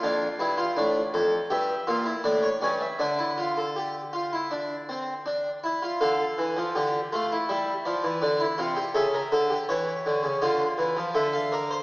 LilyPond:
<<
  \new Staff \with { instrumentName = "Harpsichord" } { \time 4/4 \key d \minor \tempo 4 = 81 << { f''2 e''4 d''16 cis''16 d''16 e''16 | d''2.~ d''8 r8 | f''2 e''8 d''4. | e''4 cis''4 d''4 e''16 f''16 d''16 c''16 | } \\ { d'8 e'16 f'16 d'8 a'8 g'8 f'16 e'16 d'8 cis'8 | d'16 e'16 f'16 a'16 g'8 f'16 e'16 d'8 c'8 d'8 e'16 f'16 | a'4 g'8 f'16 e'4~ e'16 d'16 e'16 f'16 g'16 | a'16 bes'16 a'16 g'4~ g'16 f'4 a'8 bes'8 | } >> }
  \new Staff \with { instrumentName = "Harpsichord" } { \clef bass \time 4/4 \key d \minor f,8 g,8 a,8 f,8 g,8 bes,8 a,8 g,8 | d2.~ d8 r8 | d8 e16 f16 d8 a8 g8 f16 e16 d8 c8 | cis8 d8 e8 d16 cis16 d8 e16 f16 d4 | }
>>